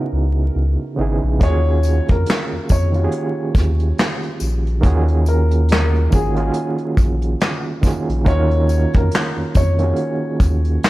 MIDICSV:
0, 0, Header, 1, 5, 480
1, 0, Start_track
1, 0, Key_signature, -6, "minor"
1, 0, Tempo, 857143
1, 787, Time_signature, 4, 2, 24, 8
1, 6103, End_track
2, 0, Start_track
2, 0, Title_t, "Upright piano"
2, 0, Program_c, 0, 0
2, 802, Note_on_c, 0, 73, 104
2, 1151, Note_off_c, 0, 73, 0
2, 1180, Note_on_c, 0, 70, 74
2, 1494, Note_off_c, 0, 70, 0
2, 1521, Note_on_c, 0, 73, 74
2, 2212, Note_off_c, 0, 73, 0
2, 2959, Note_on_c, 0, 70, 77
2, 3171, Note_off_c, 0, 70, 0
2, 3201, Note_on_c, 0, 70, 74
2, 3434, Note_off_c, 0, 70, 0
2, 3443, Note_on_c, 0, 68, 81
2, 3792, Note_off_c, 0, 68, 0
2, 4636, Note_on_c, 0, 73, 104
2, 4988, Note_off_c, 0, 73, 0
2, 5018, Note_on_c, 0, 70, 72
2, 5333, Note_off_c, 0, 70, 0
2, 5358, Note_on_c, 0, 73, 76
2, 6050, Note_off_c, 0, 73, 0
2, 6103, End_track
3, 0, Start_track
3, 0, Title_t, "Reed electric piano"
3, 0, Program_c, 1, 4
3, 0, Control_c, 1, 64, 127
3, 0, Note_on_c, 1, 49, 66
3, 0, Note_on_c, 1, 59, 61
3, 0, Note_on_c, 1, 63, 70
3, 0, Note_on_c, 1, 64, 65
3, 0, Note_on_c, 1, 66, 76
3, 0, Note_on_c, 1, 68, 72
3, 492, Note_off_c, 1, 49, 0
3, 495, Note_off_c, 1, 59, 0
3, 499, Note_off_c, 1, 63, 0
3, 503, Note_off_c, 1, 64, 0
3, 506, Note_off_c, 1, 66, 0
3, 538, Note_on_c, 1, 49, 76
3, 546, Note_on_c, 1, 59, 67
3, 552, Note_on_c, 1, 63, 67
3, 561, Note_on_c, 1, 64, 66
3, 568, Note_off_c, 1, 68, 0
3, 568, Note_on_c, 1, 68, 79
3, 768, Note_off_c, 1, 49, 0
3, 772, Note_off_c, 1, 59, 0
3, 775, Note_off_c, 1, 63, 0
3, 775, Note_on_c, 1, 51, 81
3, 780, Note_off_c, 1, 64, 0
3, 782, Note_on_c, 1, 58, 91
3, 783, Note_off_c, 1, 68, 0
3, 787, Note_on_c, 1, 61, 86
3, 793, Note_on_c, 1, 65, 84
3, 795, Control_c, 1, 64, 0
3, 799, Note_on_c, 1, 66, 83
3, 805, Note_on_c, 1, 68, 104
3, 903, Control_c, 1, 64, 127
3, 1572, Note_off_c, 1, 51, 0
3, 1575, Note_off_c, 1, 58, 0
3, 1578, Note_off_c, 1, 61, 0
3, 1581, Note_off_c, 1, 65, 0
3, 1584, Note_off_c, 1, 66, 0
3, 1587, Note_off_c, 1, 68, 0
3, 1636, Note_on_c, 1, 51, 75
3, 1643, Note_on_c, 1, 58, 66
3, 1648, Note_on_c, 1, 61, 64
3, 1654, Note_on_c, 1, 65, 71
3, 1659, Note_on_c, 1, 66, 57
3, 1665, Note_on_c, 1, 67, 63
3, 1686, Note_off_c, 1, 67, 0
3, 1702, Note_on_c, 1, 68, 86
3, 2523, Note_off_c, 1, 51, 0
3, 2526, Note_off_c, 1, 58, 0
3, 2529, Note_off_c, 1, 61, 0
3, 2532, Note_off_c, 1, 65, 0
3, 2535, Note_off_c, 1, 66, 0
3, 2556, Note_off_c, 1, 68, 0
3, 2694, Note_on_c, 1, 51, 97
3, 2700, Note_on_c, 1, 58, 88
3, 2706, Note_on_c, 1, 61, 84
3, 2712, Note_on_c, 1, 65, 84
3, 2718, Note_on_c, 1, 66, 89
3, 2723, Note_on_c, 1, 68, 110
3, 3378, Note_off_c, 1, 51, 0
3, 3381, Note_off_c, 1, 58, 0
3, 3384, Note_off_c, 1, 61, 0
3, 3387, Note_off_c, 1, 65, 0
3, 3390, Note_off_c, 1, 66, 0
3, 3393, Note_off_c, 1, 68, 0
3, 3415, Note_on_c, 1, 51, 65
3, 3421, Note_on_c, 1, 58, 58
3, 3427, Note_on_c, 1, 61, 53
3, 3431, Note_on_c, 1, 65, 60
3, 3438, Note_on_c, 1, 66, 59
3, 3443, Note_on_c, 1, 68, 75
3, 3547, Note_off_c, 1, 51, 0
3, 3551, Note_off_c, 1, 58, 0
3, 3554, Note_on_c, 1, 51, 65
3, 3556, Note_off_c, 1, 61, 0
3, 3558, Note_on_c, 1, 58, 68
3, 3559, Note_off_c, 1, 65, 0
3, 3562, Note_off_c, 1, 66, 0
3, 3564, Note_on_c, 1, 61, 63
3, 3565, Note_off_c, 1, 68, 0
3, 3570, Note_on_c, 1, 65, 71
3, 3577, Note_on_c, 1, 66, 62
3, 3583, Note_on_c, 1, 68, 79
3, 4331, Note_off_c, 1, 51, 0
3, 4333, Note_off_c, 1, 58, 0
3, 4337, Note_off_c, 1, 61, 0
3, 4339, Note_off_c, 1, 65, 0
3, 4343, Note_off_c, 1, 66, 0
3, 4346, Note_off_c, 1, 68, 0
3, 4377, Note_on_c, 1, 51, 83
3, 4383, Note_on_c, 1, 58, 75
3, 4389, Note_on_c, 1, 61, 61
3, 4395, Note_on_c, 1, 65, 69
3, 4401, Note_on_c, 1, 66, 68
3, 4407, Note_on_c, 1, 68, 86
3, 4608, Note_off_c, 1, 51, 0
3, 4611, Note_off_c, 1, 58, 0
3, 4614, Note_off_c, 1, 61, 0
3, 4617, Note_off_c, 1, 65, 0
3, 4617, Note_on_c, 1, 51, 98
3, 4620, Note_off_c, 1, 66, 0
3, 4622, Note_on_c, 1, 58, 90
3, 4623, Note_off_c, 1, 68, 0
3, 4628, Note_on_c, 1, 61, 88
3, 4634, Note_on_c, 1, 65, 84
3, 4640, Note_on_c, 1, 66, 75
3, 4645, Note_on_c, 1, 70, 97
3, 5413, Note_off_c, 1, 51, 0
3, 5416, Note_off_c, 1, 58, 0
3, 5419, Note_off_c, 1, 61, 0
3, 5421, Note_off_c, 1, 65, 0
3, 5425, Note_off_c, 1, 66, 0
3, 5427, Note_off_c, 1, 70, 0
3, 5480, Note_on_c, 1, 51, 73
3, 5484, Note_on_c, 1, 58, 73
3, 5491, Note_on_c, 1, 61, 72
3, 5496, Note_on_c, 1, 65, 62
3, 5503, Note_on_c, 1, 66, 73
3, 5509, Note_on_c, 1, 68, 77
3, 6103, Note_off_c, 1, 51, 0
3, 6103, Note_off_c, 1, 58, 0
3, 6103, Note_off_c, 1, 61, 0
3, 6103, Note_off_c, 1, 65, 0
3, 6103, Note_off_c, 1, 66, 0
3, 6103, Note_off_c, 1, 68, 0
3, 6103, End_track
4, 0, Start_track
4, 0, Title_t, "Sub bass"
4, 0, Program_c, 2, 38
4, 69, Note_on_c, 2, 37, 77
4, 280, Note_off_c, 2, 37, 0
4, 309, Note_on_c, 2, 37, 91
4, 431, Note_off_c, 2, 37, 0
4, 550, Note_on_c, 2, 32, 92
4, 671, Note_off_c, 2, 32, 0
4, 689, Note_on_c, 2, 34, 94
4, 777, Note_off_c, 2, 34, 0
4, 790, Note_on_c, 2, 39, 111
4, 1123, Note_off_c, 2, 39, 0
4, 1174, Note_on_c, 2, 41, 85
4, 1259, Note_off_c, 2, 41, 0
4, 1411, Note_on_c, 2, 41, 47
4, 1450, Note_off_c, 2, 41, 0
4, 1513, Note_on_c, 2, 41, 90
4, 1722, Note_off_c, 2, 41, 0
4, 1987, Note_on_c, 2, 39, 92
4, 2199, Note_off_c, 2, 39, 0
4, 2468, Note_on_c, 2, 34, 94
4, 2708, Note_on_c, 2, 39, 121
4, 2716, Note_off_c, 2, 34, 0
4, 3405, Note_off_c, 2, 39, 0
4, 3431, Note_on_c, 2, 32, 93
4, 3641, Note_off_c, 2, 32, 0
4, 3905, Note_on_c, 2, 34, 87
4, 4117, Note_off_c, 2, 34, 0
4, 4528, Note_on_c, 2, 34, 94
4, 4627, Note_on_c, 2, 39, 114
4, 4636, Note_off_c, 2, 34, 0
4, 4962, Note_off_c, 2, 39, 0
4, 5011, Note_on_c, 2, 41, 100
4, 5098, Note_off_c, 2, 41, 0
4, 5247, Note_on_c, 2, 41, 52
4, 5287, Note_off_c, 2, 41, 0
4, 5350, Note_on_c, 2, 41, 91
4, 5560, Note_off_c, 2, 41, 0
4, 5825, Note_on_c, 2, 39, 83
4, 6037, Note_off_c, 2, 39, 0
4, 6103, End_track
5, 0, Start_track
5, 0, Title_t, "Drums"
5, 789, Note_on_c, 9, 36, 97
5, 789, Note_on_c, 9, 42, 73
5, 845, Note_off_c, 9, 36, 0
5, 845, Note_off_c, 9, 42, 0
5, 1027, Note_on_c, 9, 54, 45
5, 1033, Note_on_c, 9, 42, 65
5, 1083, Note_off_c, 9, 54, 0
5, 1089, Note_off_c, 9, 42, 0
5, 1167, Note_on_c, 9, 42, 48
5, 1172, Note_on_c, 9, 36, 92
5, 1223, Note_off_c, 9, 42, 0
5, 1228, Note_off_c, 9, 36, 0
5, 1266, Note_on_c, 9, 42, 82
5, 1287, Note_on_c, 9, 38, 116
5, 1290, Note_on_c, 9, 39, 88
5, 1322, Note_off_c, 9, 42, 0
5, 1343, Note_off_c, 9, 38, 0
5, 1346, Note_off_c, 9, 39, 0
5, 1507, Note_on_c, 9, 54, 74
5, 1508, Note_on_c, 9, 42, 59
5, 1512, Note_on_c, 9, 36, 77
5, 1563, Note_off_c, 9, 54, 0
5, 1564, Note_off_c, 9, 42, 0
5, 1568, Note_off_c, 9, 36, 0
5, 1646, Note_on_c, 9, 42, 47
5, 1702, Note_off_c, 9, 42, 0
5, 1745, Note_on_c, 9, 42, 66
5, 1801, Note_off_c, 9, 42, 0
5, 1987, Note_on_c, 9, 36, 92
5, 1988, Note_on_c, 9, 54, 46
5, 1994, Note_on_c, 9, 42, 73
5, 2005, Note_on_c, 9, 38, 37
5, 2043, Note_off_c, 9, 36, 0
5, 2044, Note_off_c, 9, 54, 0
5, 2050, Note_off_c, 9, 42, 0
5, 2061, Note_off_c, 9, 38, 0
5, 2126, Note_on_c, 9, 42, 44
5, 2182, Note_off_c, 9, 42, 0
5, 2230, Note_on_c, 9, 42, 68
5, 2237, Note_on_c, 9, 38, 111
5, 2240, Note_on_c, 9, 39, 94
5, 2286, Note_off_c, 9, 42, 0
5, 2293, Note_off_c, 9, 38, 0
5, 2296, Note_off_c, 9, 39, 0
5, 2368, Note_on_c, 9, 42, 38
5, 2424, Note_off_c, 9, 42, 0
5, 2464, Note_on_c, 9, 54, 70
5, 2469, Note_on_c, 9, 42, 67
5, 2520, Note_off_c, 9, 54, 0
5, 2525, Note_off_c, 9, 42, 0
5, 2614, Note_on_c, 9, 42, 43
5, 2670, Note_off_c, 9, 42, 0
5, 2706, Note_on_c, 9, 42, 76
5, 2707, Note_on_c, 9, 36, 98
5, 2762, Note_off_c, 9, 42, 0
5, 2763, Note_off_c, 9, 36, 0
5, 2846, Note_on_c, 9, 42, 33
5, 2902, Note_off_c, 9, 42, 0
5, 2946, Note_on_c, 9, 54, 47
5, 2950, Note_on_c, 9, 42, 65
5, 3002, Note_off_c, 9, 54, 0
5, 3006, Note_off_c, 9, 42, 0
5, 3086, Note_on_c, 9, 42, 52
5, 3142, Note_off_c, 9, 42, 0
5, 3184, Note_on_c, 9, 42, 79
5, 3205, Note_on_c, 9, 38, 115
5, 3208, Note_on_c, 9, 39, 90
5, 3240, Note_off_c, 9, 42, 0
5, 3261, Note_off_c, 9, 38, 0
5, 3264, Note_off_c, 9, 39, 0
5, 3332, Note_on_c, 9, 42, 33
5, 3388, Note_off_c, 9, 42, 0
5, 3427, Note_on_c, 9, 42, 62
5, 3428, Note_on_c, 9, 54, 74
5, 3431, Note_on_c, 9, 36, 82
5, 3483, Note_off_c, 9, 42, 0
5, 3484, Note_off_c, 9, 54, 0
5, 3487, Note_off_c, 9, 36, 0
5, 3563, Note_on_c, 9, 42, 45
5, 3619, Note_off_c, 9, 42, 0
5, 3660, Note_on_c, 9, 42, 70
5, 3716, Note_off_c, 9, 42, 0
5, 3798, Note_on_c, 9, 42, 37
5, 3854, Note_off_c, 9, 42, 0
5, 3905, Note_on_c, 9, 36, 93
5, 3908, Note_on_c, 9, 54, 50
5, 3909, Note_on_c, 9, 42, 70
5, 3961, Note_off_c, 9, 36, 0
5, 3964, Note_off_c, 9, 54, 0
5, 3965, Note_off_c, 9, 42, 0
5, 4042, Note_on_c, 9, 42, 44
5, 4098, Note_off_c, 9, 42, 0
5, 4147, Note_on_c, 9, 42, 70
5, 4153, Note_on_c, 9, 38, 119
5, 4156, Note_on_c, 9, 39, 86
5, 4203, Note_off_c, 9, 42, 0
5, 4209, Note_off_c, 9, 38, 0
5, 4212, Note_off_c, 9, 39, 0
5, 4385, Note_on_c, 9, 36, 87
5, 4386, Note_on_c, 9, 54, 74
5, 4387, Note_on_c, 9, 42, 73
5, 4398, Note_on_c, 9, 38, 34
5, 4441, Note_off_c, 9, 36, 0
5, 4442, Note_off_c, 9, 54, 0
5, 4443, Note_off_c, 9, 42, 0
5, 4454, Note_off_c, 9, 38, 0
5, 4533, Note_on_c, 9, 42, 45
5, 4589, Note_off_c, 9, 42, 0
5, 4627, Note_on_c, 9, 36, 100
5, 4628, Note_on_c, 9, 42, 71
5, 4683, Note_off_c, 9, 36, 0
5, 4684, Note_off_c, 9, 42, 0
5, 4765, Note_on_c, 9, 42, 38
5, 4821, Note_off_c, 9, 42, 0
5, 4867, Note_on_c, 9, 54, 46
5, 4868, Note_on_c, 9, 42, 61
5, 4923, Note_off_c, 9, 54, 0
5, 4924, Note_off_c, 9, 42, 0
5, 5003, Note_on_c, 9, 42, 47
5, 5010, Note_on_c, 9, 36, 92
5, 5059, Note_off_c, 9, 42, 0
5, 5066, Note_off_c, 9, 36, 0
5, 5103, Note_on_c, 9, 42, 82
5, 5124, Note_on_c, 9, 38, 110
5, 5127, Note_on_c, 9, 39, 88
5, 5159, Note_off_c, 9, 42, 0
5, 5180, Note_off_c, 9, 38, 0
5, 5183, Note_off_c, 9, 39, 0
5, 5345, Note_on_c, 9, 42, 61
5, 5349, Note_on_c, 9, 54, 69
5, 5350, Note_on_c, 9, 36, 84
5, 5401, Note_off_c, 9, 42, 0
5, 5405, Note_off_c, 9, 54, 0
5, 5406, Note_off_c, 9, 36, 0
5, 5481, Note_on_c, 9, 42, 47
5, 5537, Note_off_c, 9, 42, 0
5, 5579, Note_on_c, 9, 42, 66
5, 5635, Note_off_c, 9, 42, 0
5, 5824, Note_on_c, 9, 36, 95
5, 5826, Note_on_c, 9, 54, 48
5, 5829, Note_on_c, 9, 42, 78
5, 5880, Note_off_c, 9, 36, 0
5, 5882, Note_off_c, 9, 54, 0
5, 5885, Note_off_c, 9, 42, 0
5, 5962, Note_on_c, 9, 42, 45
5, 6018, Note_off_c, 9, 42, 0
5, 6066, Note_on_c, 9, 42, 74
5, 6072, Note_on_c, 9, 38, 117
5, 6076, Note_on_c, 9, 39, 97
5, 6103, Note_off_c, 9, 38, 0
5, 6103, Note_off_c, 9, 39, 0
5, 6103, Note_off_c, 9, 42, 0
5, 6103, End_track
0, 0, End_of_file